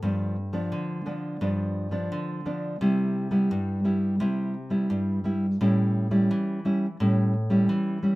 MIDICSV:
0, 0, Header, 1, 2, 480
1, 0, Start_track
1, 0, Tempo, 696864
1, 17, Time_signature, 4, 2, 24, 8
1, 5616, End_track
2, 0, Start_track
2, 0, Title_t, "Nylon-string guitar"
2, 0, Program_c, 0, 24
2, 17, Note_on_c, 0, 43, 66
2, 21, Note_on_c, 0, 53, 56
2, 26, Note_on_c, 0, 59, 59
2, 26, Note_on_c, 0, 62, 55
2, 243, Note_off_c, 0, 53, 0
2, 244, Note_off_c, 0, 59, 0
2, 247, Note_off_c, 0, 62, 0
2, 364, Note_on_c, 0, 53, 62
2, 367, Note_on_c, 0, 59, 66
2, 369, Note_on_c, 0, 62, 61
2, 474, Note_off_c, 0, 43, 0
2, 495, Note_on_c, 0, 50, 64
2, 692, Note_off_c, 0, 53, 0
2, 694, Note_off_c, 0, 59, 0
2, 694, Note_off_c, 0, 62, 0
2, 728, Note_on_c, 0, 53, 53
2, 731, Note_on_c, 0, 59, 54
2, 734, Note_on_c, 0, 62, 57
2, 935, Note_off_c, 0, 53, 0
2, 935, Note_off_c, 0, 59, 0
2, 937, Note_off_c, 0, 62, 0
2, 952, Note_off_c, 0, 50, 0
2, 971, Note_on_c, 0, 43, 65
2, 973, Note_on_c, 0, 53, 57
2, 975, Note_on_c, 0, 59, 56
2, 978, Note_on_c, 0, 62, 63
2, 1296, Note_off_c, 0, 53, 0
2, 1298, Note_off_c, 0, 59, 0
2, 1299, Note_off_c, 0, 62, 0
2, 1317, Note_on_c, 0, 53, 56
2, 1320, Note_on_c, 0, 59, 59
2, 1324, Note_on_c, 0, 62, 60
2, 1431, Note_off_c, 0, 43, 0
2, 1459, Note_on_c, 0, 50, 67
2, 1649, Note_off_c, 0, 53, 0
2, 1651, Note_off_c, 0, 59, 0
2, 1653, Note_off_c, 0, 62, 0
2, 1691, Note_on_c, 0, 53, 52
2, 1693, Note_on_c, 0, 59, 57
2, 1695, Note_on_c, 0, 62, 60
2, 1896, Note_off_c, 0, 53, 0
2, 1896, Note_off_c, 0, 59, 0
2, 1898, Note_off_c, 0, 62, 0
2, 1915, Note_off_c, 0, 50, 0
2, 1935, Note_on_c, 0, 48, 67
2, 1939, Note_on_c, 0, 55, 54
2, 1940, Note_on_c, 0, 59, 50
2, 1944, Note_on_c, 0, 64, 59
2, 2260, Note_off_c, 0, 55, 0
2, 2260, Note_off_c, 0, 59, 0
2, 2263, Note_off_c, 0, 64, 0
2, 2279, Note_on_c, 0, 55, 61
2, 2282, Note_on_c, 0, 59, 62
2, 2286, Note_on_c, 0, 64, 65
2, 2394, Note_off_c, 0, 48, 0
2, 2417, Note_on_c, 0, 43, 64
2, 2610, Note_off_c, 0, 55, 0
2, 2612, Note_off_c, 0, 59, 0
2, 2614, Note_off_c, 0, 64, 0
2, 2648, Note_on_c, 0, 55, 48
2, 2652, Note_on_c, 0, 59, 50
2, 2655, Note_on_c, 0, 64, 60
2, 2855, Note_off_c, 0, 55, 0
2, 2857, Note_off_c, 0, 59, 0
2, 2858, Note_off_c, 0, 64, 0
2, 2874, Note_off_c, 0, 43, 0
2, 2893, Note_on_c, 0, 48, 71
2, 2894, Note_on_c, 0, 55, 51
2, 2899, Note_on_c, 0, 59, 52
2, 2902, Note_on_c, 0, 64, 57
2, 3121, Note_off_c, 0, 55, 0
2, 3122, Note_off_c, 0, 59, 0
2, 3126, Note_off_c, 0, 64, 0
2, 3238, Note_on_c, 0, 55, 52
2, 3242, Note_on_c, 0, 59, 58
2, 3244, Note_on_c, 0, 64, 60
2, 3353, Note_off_c, 0, 48, 0
2, 3375, Note_on_c, 0, 43, 62
2, 3570, Note_off_c, 0, 55, 0
2, 3572, Note_off_c, 0, 59, 0
2, 3573, Note_off_c, 0, 64, 0
2, 3610, Note_on_c, 0, 55, 51
2, 3615, Note_on_c, 0, 59, 52
2, 3619, Note_on_c, 0, 64, 63
2, 3756, Note_off_c, 0, 55, 0
2, 3759, Note_off_c, 0, 59, 0
2, 3759, Note_off_c, 0, 64, 0
2, 3833, Note_off_c, 0, 43, 0
2, 3862, Note_on_c, 0, 45, 62
2, 3864, Note_on_c, 0, 55, 57
2, 3866, Note_on_c, 0, 61, 51
2, 3871, Note_on_c, 0, 64, 54
2, 4182, Note_off_c, 0, 55, 0
2, 4184, Note_off_c, 0, 61, 0
2, 4186, Note_off_c, 0, 64, 0
2, 4208, Note_on_c, 0, 55, 54
2, 4210, Note_on_c, 0, 61, 61
2, 4211, Note_on_c, 0, 64, 70
2, 4317, Note_off_c, 0, 45, 0
2, 4345, Note_on_c, 0, 52, 68
2, 4535, Note_off_c, 0, 55, 0
2, 4535, Note_off_c, 0, 61, 0
2, 4535, Note_off_c, 0, 64, 0
2, 4580, Note_on_c, 0, 55, 53
2, 4584, Note_on_c, 0, 61, 47
2, 4584, Note_on_c, 0, 64, 61
2, 4721, Note_off_c, 0, 55, 0
2, 4721, Note_off_c, 0, 61, 0
2, 4722, Note_off_c, 0, 64, 0
2, 4797, Note_off_c, 0, 52, 0
2, 4823, Note_on_c, 0, 45, 70
2, 4828, Note_on_c, 0, 55, 53
2, 4830, Note_on_c, 0, 61, 54
2, 4831, Note_on_c, 0, 64, 60
2, 5047, Note_off_c, 0, 55, 0
2, 5049, Note_off_c, 0, 61, 0
2, 5049, Note_off_c, 0, 64, 0
2, 5166, Note_on_c, 0, 55, 61
2, 5170, Note_on_c, 0, 61, 59
2, 5173, Note_on_c, 0, 64, 63
2, 5276, Note_off_c, 0, 45, 0
2, 5297, Note_on_c, 0, 52, 65
2, 5493, Note_off_c, 0, 55, 0
2, 5494, Note_off_c, 0, 61, 0
2, 5496, Note_off_c, 0, 64, 0
2, 5529, Note_on_c, 0, 55, 56
2, 5533, Note_on_c, 0, 61, 49
2, 5536, Note_on_c, 0, 64, 57
2, 5616, Note_off_c, 0, 52, 0
2, 5616, Note_off_c, 0, 55, 0
2, 5616, Note_off_c, 0, 61, 0
2, 5616, Note_off_c, 0, 64, 0
2, 5616, End_track
0, 0, End_of_file